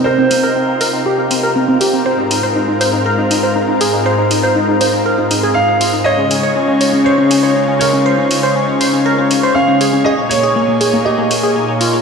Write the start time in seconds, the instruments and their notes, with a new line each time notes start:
Already playing: analog synth pad C3 C4 D#4 A#4, grand piano D#5
0.04 analog synth pad F4, synth arpeggio sound A#4, grand piano C5
0.18 synth arpeggio sound C4
0.31 synth arpeggio sound C4, open hi-hat
0.43 synth arpeggio sound A#4
0.56 synth arpeggio sound C4
0.68 synth arpeggio sound C4
0.81 synth arpeggio sound A#4, open hi-hat
0.93 synth arpeggio sound C4
1.06 synth arpeggio sound G4
1.18 synth arpeggio sound C4
1.31 synth arpeggio sound C4, open hi-hat
1.43 synth arpeggio sound A#4
1.56 synth arpeggio sound C4
1.68 synth arpeggio sound C4
1.81 synth arpeggio sound G4, open hi-hat
1.93 synth arpeggio sound C4
2.06 analog synth pad G#2 G#3, synth arpeggio sound C5
2.18 synth arpeggio sound D#4
2.31 synth arpeggio sound D#4, open hi-hat
2.43 synth arpeggio sound C5
2.56 synth arpeggio sound D#4
2.68 synth arpeggio sound D#4
2.81 synth arpeggio sound C5, open hi-hat
2.93 synth arpeggio sound D#4
3.06 synth arpeggio sound A#4
3.18 synth arpeggio sound D#4
3.31 synth arpeggio sound D#4, open hi-hat
3.43 synth arpeggio sound C5
3.56 synth arpeggio sound D#4
3.68 synth arpeggio sound D#4
3.81 synth arpeggio sound G#4, open hi-hat
3.93 synth arpeggio sound D#4
4.06 synth arpeggio sound C5
4.18 synth arpeggio sound D#4
4.31 synth arpeggio sound D#4, open hi-hat
4.43 synth arpeggio sound C5
4.56 synth arpeggio sound D#4
4.68 synth arpeggio sound D#4
4.81 synth arpeggio sound C5, open hi-hat
4.93 synth arpeggio sound D#4
5.06 synth arpeggio sound A#4
5.18 synth arpeggio sound D#4
5.31 synth arpeggio sound D#4, open hi-hat
5.43 synth arpeggio sound G#4
5.54 synth arpeggio sound D#4, grand piano F5
5.68 synth arpeggio sound D#4
5.81 synth arpeggio sound F4, open hi-hat
5.93 synth arpeggio sound D#4
6.04 analog synth pad C#3 D#4 F4 C#5, synth arpeggio sound C#5, grand piano D#5
6.18 synth arpeggio sound C#4
6.31 synth arpeggio sound C#4, open hi-hat
6.43 synth arpeggio sound C#5
6.56 synth arpeggio sound C#4
6.68 synth arpeggio sound C#4
6.81 synth arpeggio sound C#5, open hi-hat
6.93 synth arpeggio sound C#4
7.04 synth arpeggio sound C5, grand piano C#5
7.18 synth arpeggio sound C#4
7.31 synth arpeggio sound C#4, open hi-hat
7.43 synth arpeggio sound C#5
7.56 synth arpeggio sound C#4
7.68 synth arpeggio sound C#4
7.79 synth arpeggio sound A#4, grand piano C#5, open hi-hat
7.93 synth arpeggio sound C#4
8.06 synth arpeggio sound C5
8.18 synth arpeggio sound C#4
8.31 synth arpeggio sound C#4, open hi-hat
8.43 synth arpeggio sound C5
8.56 synth arpeggio sound C#4
8.68 synth arpeggio sound C#4
8.81 synth arpeggio sound C5, open hi-hat
8.93 synth arpeggio sound C#4
9.06 synth arpeggio sound A#4
9.18 synth arpeggio sound C#4
9.31 synth arpeggio sound C#4, open hi-hat
9.43 synth arpeggio sound C5
9.54 synth arpeggio sound C#4, grand piano F5
9.68 synth arpeggio sound C#4
9.81 synth arpeggio sound G#4, open hi-hat
9.93 synth arpeggio sound C#4
10.04 analog synth pad A#2 A#3 D#4 G#4, synth arpeggio sound G#4, grand piano D#5
10.18 synth arpeggio sound A#3
10.29 synth arpeggio sound A#3, grand piano C#5, open hi-hat
10.43 synth arpeggio sound G#4
10.56 synth arpeggio sound A#3
10.68 synth arpeggio sound A#3
10.81 synth arpeggio sound G#4, open hi-hat
10.93 synth arpeggio sound A#3
11.04 synth arpeggio sound G4, grand piano D#5
11.18 synth arpeggio sound A#3
11.31 synth arpeggio sound A#3, open hi-hat
11.43 synth arpeggio sound G#4
11.56 synth arpeggio sound A#3
11.68 synth arpeggio sound A#3
11.81 synth arpeggio sound F4, open hi-hat
11.93 synth arpeggio sound A#3